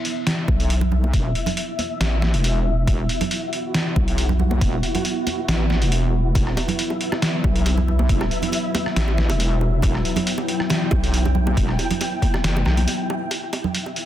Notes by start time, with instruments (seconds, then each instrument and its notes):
Already playing: analog synth pad B3 E4 E5, synth texture E4 E5
0.05 closed hi-hat
0.27 snare, closed hi-hat
0.48 wobble bass B1, kick, high conga
0.60 closed hi-hat
0.70 closed hi-hat
0.81 low conga
0.92 low conga
1.04 high conga
1.13 wobble bass E1, kick, closed hi-hat
1.35 closed hi-hat
1.46 closed hi-hat, low conga
1.57 closed hi-hat
1.79 closed hi-hat, high conga
2.00 wobble bass A1, snare, closed hi-hat
2.22 snare, high conga
2.34 wobble bass E1, closed hi-hat
2.44 closed hi-hat
2.87 wobble bass E1, synth texture F#4, kick, closed hi-hat
3.09 closed hi-hat
3.21 closed hi-hat, low conga
3.31 closed hi-hat
3.53 closed hi-hat
3.74 snare, closed hi-hat
3.96 wobble bass B1, kick, high conga
4.08 closed hi-hat
4.18 closed hi-hat
4.29 low conga
4.39 low conga
4.51 high conga
4.61 wobble bass E1, kick, closed hi-hat
4.83 closed hi-hat
4.95 closed hi-hat, low conga
5.05 closed hi-hat
5.27 closed hi-hat, high conga
5.48 wobble bass A1, snare, closed hi-hat
5.70 snare, high conga
5.82 wobble bass E1, closed hi-hat
5.92 closed hi-hat
6.35 wobble bass E1, analog synth pad F#3, synth texture E5, kick, closed hi-hat, high bongo
6.47 cross-stick
6.57 closed hi-hat, high bongo
6.68 closed hi-hat, low conga
6.79 closed hi-hat
6.90 high bongo
7.01 closed hi-hat
7.12 cross-stick, high bongo
7.22 snare, closed hi-hat
7.44 wobble bass B1, kick, high bongo, high conga
7.56 closed hi-hat
7.66 closed hi-hat, high bongo
7.77 low conga
7.88 low conga
7.99 high bongo, high conga
8.09 wobble bass E1, kick, closed hi-hat
8.21 cross-stick, high bongo
8.31 closed hi-hat
8.42 closed hi-hat, low conga
8.52 closed hi-hat, high bongo
8.75 closed hi-hat, high bongo, high conga
8.86 cross-stick
8.96 wobble bass A1, snare, closed hi-hat
9.08 high bongo
9.18 snare, high conga
9.30 wobble bass E1, closed hi-hat, high bongo
9.40 closed hi-hat
9.61 high bongo
9.82 wobble bass E1, synth texture G5, kick, closed hi-hat, high bongo
9.95 cross-stick
10.05 closed hi-hat
10.16 closed hi-hat, high bongo, low conga
10.27 closed hi-hat
10.38 high bongo
10.48 closed hi-hat
10.60 cross-stick
10.70 snare, closed hi-hat, high bongo
10.91 wobble bass B1, kick, high bongo, high conga
11.04 closed hi-hat
11.14 closed hi-hat
11.25 high bongo, low conga
11.35 low conga
11.47 high bongo, high conga
11.57 wobble bass E1, kick, closed hi-hat
11.69 cross-stick
11.79 closed hi-hat, high bongo
11.91 closed hi-hat, low conga
12.01 closed hi-hat, high bongo
12.22 kick, closed hi-hat, high conga
12.34 cross-stick, high bongo
12.44 wobble bass F#1, snare, closed hi-hat
12.56 high bongo
12.65 wobble bass B1, cross-stick, snare, high conga
12.77 closed hi-hat, high conga
12.88 closed hi-hat, high bongo
13.10 high bongo
13.31 analog synth pad B3 E4, synth texture E4 E5, closed hi-hat, high bongo
13.53 closed hi-hat, high bongo
13.64 low conga
13.75 closed hi-hat
13.86 high bongo
13.96 closed hi-hat